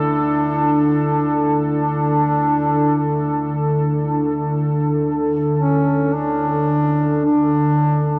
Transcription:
0.00 8.19 D3 medium
0.00 1.73 D4 loud
0.00 8.19 E4 medium
0.00 8.19 A4 medium
1.81 3.37 D4 medium
5.59 6.15 C#4 medium
6.14 7.21 D4 loud
7.25 8.19 D4 loud

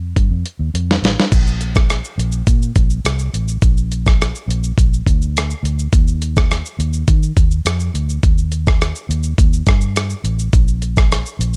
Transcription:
0.00 0.13 F2 medium
0.16 0.28 G2 medium
0.16 kick medium
0.16 closed hi-hat medium
0.30 0.42 F2 medium
0.46 closed hi-hat medium
0.59 0.71 D#2 medium
0.74 0.97 F2 medium
0.74 closed hi-hat medium
0.91 snare medium
1.02 1.14 A1 medium
1.02 snare medium
1.02 closed hi-hat soft
1.20 snare medium
1.32 2.00 A#1 loud
1.32 kick loud
1.32 closed hi-hat medium
1.32 crash loud
1.32 shaker medium
1.47 shaker soft
1.61 closed hi-hat soft
1.61 shaker soft
1.75 kick loud
1.75 cross-stick medium
1.75 shaker medium
1.90 cross-stick medium
1.90 closed hi-hat medium
1.90 shaker medium
2.04 shaker medium
2.18 2.41 A#1 loud
2.18 closed hi-hat medium
2.18 shaker medium
2.32 shaker medium
2.47 2.70 A#2 medium
2.47 kick medium
2.47 closed hi-hat medium
2.47 shaker medium
2.62 shaker medium
2.76 2.99 A#1 medium
2.76 kick medium
2.76 closed hi-hat medium
2.76 shaker medium
2.90 shaker soft
3.05 3.28 C2 medium
3.05 cross-stick loud
3.05 closed hi-hat medium
3.05 shaker medium
3.19 shaker soft
3.34 3.57 A1 medium
3.34 closed hi-hat soft
3.34 shaker soft
3.48 shaker medium
3.62 4.31 A#1 loud
3.62 kick loud
3.62 closed hi-hat medium
3.62 shaker medium
3.77 shaker soft
3.92 closed hi-hat soft
3.92 shaker soft
4.06 kick medium
4.06 cross-stick medium
4.06 shaker medium
4.22 cross-stick medium
4.22 closed hi-hat medium
4.22 shaker medium
4.35 shaker medium
4.48 4.71 A#1 loud
4.48 closed hi-hat medium
4.48 shaker soft
4.64 shaker medium
4.78 5.01 A#1 medium
4.78 kick medium
4.78 closed hi-hat medium
4.78 shaker medium
4.94 shaker medium
5.06 5.52 D2 medium
5.06 kick medium
5.06 closed hi-hat medium
5.06 shaker medium
5.22 shaker medium
5.37 cross-stick medium
5.37 closed hi-hat medium
5.37 shaker medium
5.50 shaker soft
5.63 5.86 D2 medium
5.63 closed hi-hat soft
5.63 shaker soft
5.79 shaker medium
5.92 6.61 D#2 loud
5.92 kick loud
5.92 closed hi-hat medium
5.92 shaker medium
6.08 shaker medium
6.22 closed hi-hat medium
6.22 shaker soft
6.37 kick medium
6.37 cross-stick medium
6.37 shaker medium
6.51 cross-stick medium
6.51 closed hi-hat medium
6.51 shaker medium
6.66 shaker medium
6.79 7.02 D#2 loud
6.79 closed hi-hat soft
6.79 shaker medium
6.93 shaker medium
7.08 7.31 D#3 loud
7.08 kick medium
7.08 closed hi-hat medium
7.08 shaker medium
7.23 shaker medium
7.36 7.59 D#2 loud
7.36 kick medium
7.36 closed hi-hat medium
7.36 shaker medium
7.51 shaker soft
7.65 7.88 F2 medium
7.65 cross-stick medium
7.65 closed hi-hat medium
7.65 shaker medium
7.80 shaker medium
7.94 8.17 D2 medium
7.94 closed hi-hat soft
7.94 shaker soft
8.09 shaker medium
8.23 8.91 D#2 loud
8.23 kick loud
8.23 closed hi-hat medium
8.23 shaker medium
8.38 shaker soft
8.52 closed hi-hat soft
8.52 shaker soft
8.67 kick loud
8.67 cross-stick medium
8.67 shaker soft
8.81 cross-stick medium
8.81 closed hi-hat medium
8.81 shaker medium
8.95 shaker medium
9.09 9.32 D#2 loud
9.09 closed hi-hat soft
9.09 shaker medium
9.23 shaker medium
9.38 9.61 D#2 medium
9.38 kick loud
9.38 closed hi-hat medium
9.38 shaker medium
9.53 shaker medium
9.67 10.13 G2 loud
9.67 kick medium
9.67 cross-stick medium
9.67 closed hi-hat medium
9.67 shaker medium
9.81 shaker medium
9.96 cross-stick medium
9.96 closed hi-hat medium
9.96 shaker medium
10.10 shaker soft
10.24 10.47 A1 medium
10.24 closed hi-hat soft
10.24 shaker soft
10.39 shaker medium
10.53 11.22 A#1 loud
10.53 kick loud
10.53 closed hi-hat medium
10.53 shaker medium
10.68 shaker soft
10.82 closed hi-hat soft
10.82 shaker soft
10.97 kick medium
10.97 cross-stick medium
10.97 shaker medium
11.12 cross-stick medium
11.12 closed hi-hat medium
11.12 shaker medium
11.26 shaker medium
11.39 11.57 A#1 loud
11.39 closed hi-hat medium
11.39 shaker medium
11.54 shaker soft

